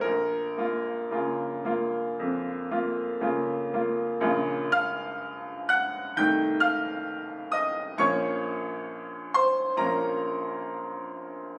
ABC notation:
X:1
M:4/4
L:1/8
Q:1/4=64
K:Bbm
V:1 name="Grand piano"
B6 z2 | z [ff']2 [gg'] [=g=g'] [ff']2 [ee'] | [dd']3 [cc'] [Bb]3 z |]
V:2 name="Grand piano"
B,,, [B,F] [D,B,F] [B,F] F,, [B,F] [D,B,F] [B,F] | [B,,,D,B,F]4 [C,,E,=A,E]4 | [B,,,F,B,D]4 [B,,,F,B,D]4 |]